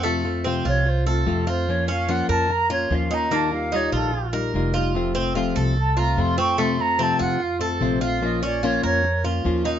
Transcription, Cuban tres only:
\new Staff \with { instrumentName = "Cuban tres" } { \time 4/4 \key f \phrygian \tempo 4 = 147 a4 c'8 f'4 a'4 f'8~ | f'8 des'8 f'8 bes'4 f'4 ees'8 | bes4 ees'8 f'4 bes'4 f'8~ | f'8 c'8 f'8 a'4 f'4 c'8 |
a4 c'8 f'4 a'4 f'8~ | f'8 des'8 f'8 bes'4 f'4 ees'8 | }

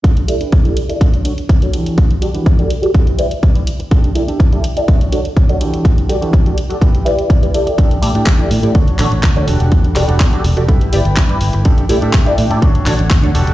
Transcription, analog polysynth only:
\new Staff \with { instrumentName = "Analog polysynth" } { \time 4/4 \key a \mixolydian \tempo 4 = 124 r8 <e' g' a' d''>16 r8 <e' g' a' d''>16 r16 <e' g' a' d''>16 r8 <d' fis' a' cis''>16 r8 <d' fis' a' cis''>16 r8 | r8 <fis' g' a' d''>16 r8 <fis' g' a' d''>16 r16 <fis' g' a' d''>16 r8 <e' g' b' d''>16 r8 <e' g' b' d''>16 r8 | r8 <e' g' a' d''>16 r8 <e' g' a' d''>16 r16 <e' g' a' d''>16 r8 <d' fis' a' cis''>16 r8 <d' fis' a' cis''>16 r8 | r8 <fis' g' a' d''>16 r8 <fis' g' a' d''>16 r16 <fis' g' a' d''>16 r8 <e' g' b' d''>8. <e' g' b' d''>16 <e' g' a' d''>8~ |
<e' g' a' d''>8 <e' g' a' d''>16 r8 <e' g' a' d''>16 r16 <e' g' a' d''>16 r8 <d' fis' a' cis''>16 r8 <d' fis' a' cis''>16 r8 | r8 <fis' g' a' d''>16 r8 <fis' g' a' d''>16 r16 <fis' g' a' d''>16 r8 <e' g' b' d''>16 r8 <e' g' b' d''>16 r8 | r8 <e' g' a' d''>16 r8 <e' g' a' d''>16 r16 <e' g' a' d''>16 r8 <d' fis' a' cis''>16 r8 <d' fis' a' cis''>16 r8 | }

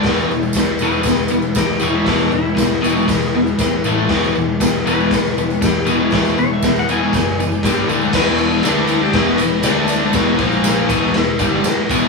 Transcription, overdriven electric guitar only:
\new Staff \with { instrumentName = "Overdriven electric guitar" } { \clef bass \time 4/4 \key e \major \tempo 4 = 119 <e, b, e>8 <e, b,>8 <e, b,>8 <e, b, e>8 <e, b,>8 <e, b,>8 <e, b,>8 <e, b, e>8 | <e, b, e>8 <e, b,>8 <e, b,>8 <e, b, e>8 <e, b,>8 <e, b,>8 <e, b,>8 <a, e a>8 | <e, b, e>8 <e, b,>8 <e, b,>8 <e, b, e>8 <e, b,>8 <e, b,>8 <e, b,>8 <e, b, e>8 | <e, b, e>8 <e, b,>8 <e, b,>8 <e, b, e>8 <e, b,>8 <e, b,>8 <g, d g>8 <d a d'>8 |
<e, b, e>4 <d a d'>4 <e, b, e>8 <e, b,>8 <d a d'>4 | <e, b, e>8 <ais, eis ais>4 <e, b, e>8 <e, b,>8 <g, d g>8 r8 <e, b, e>8 | }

